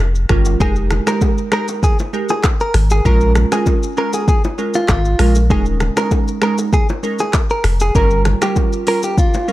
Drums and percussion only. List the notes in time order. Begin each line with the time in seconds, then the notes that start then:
0.00 high bongo
0.15 shaker
0.29 finger snap, kick, cross-stick, shaker
0.45 high bongo, shaker
0.60 kick, low conga, shaker
0.76 shaker
0.91 finger snap, cross-stick, low bongo, low conga, shaker
1.07 finger snap, cross-stick, low bongo, shaker
1.21 kick, high bongo, shaker
1.38 shaker
1.52 finger snap, cross-stick, shaker
1.68 high bongo, shaker
1.83 kick, low conga, shaker
1.99 low bongo, shaker
2.13 shaker
2.29 low bongo, shaker
2.43 finger snap, kick, cross-stick, clap, high bongo, shaker
2.60 shaker
2.74 finger snap, cross-stick, open hi-hat, shaker
2.90 high bongo, shaker
3.05 kick, low conga, shaker
3.21 shaker
3.35 finger snap, cross-stick, low bongo, low conga, shaker
3.52 finger snap, cross-stick, low bongo, shaker
3.66 kick, high bongo, shaker
3.83 shaker
3.97 shaker
4.13 high bongo, shaker
4.28 kick, low conga, shaker
4.44 low bongo, shaker
4.58 shaker
4.74 low bongo, shaker
4.88 finger snap, kick, cross-stick, clap, high bongo, shaker
5.05 shaker
5.19 finger snap, cross-stick, open hi-hat, shaker
5.35 high bongo, shaker
5.50 kick, low conga, shaker
5.66 shaker
5.80 finger snap, cross-stick, low bongo, low conga, shaker
5.97 finger snap, cross-stick, low bongo, shaker
6.11 kick, high bongo, shaker
6.28 shaker
6.42 finger snap, cross-stick, shaker
6.58 high bongo, shaker
6.73 kick, low conga, shaker
6.89 low bongo, shaker
7.03 shaker
7.19 low bongo, shaker
7.33 finger snap, kick, cross-stick, clap, high bongo, shaker
7.50 shaker
7.64 finger snap, cross-stick, open hi-hat, shaker
7.80 high bongo, shaker
7.95 kick, low conga, shaker
8.10 shaker
8.25 finger snap, cross-stick, low bongo, low conga, shaker
8.42 finger snap, cross-stick, low bongo, shaker
8.56 kick, high bongo, shaker
8.73 shaker
8.87 open hi-hat, shaker
9.03 high bongo, shaker
9.18 kick, low conga, shaker
9.34 low bongo, shaker
9.48 shaker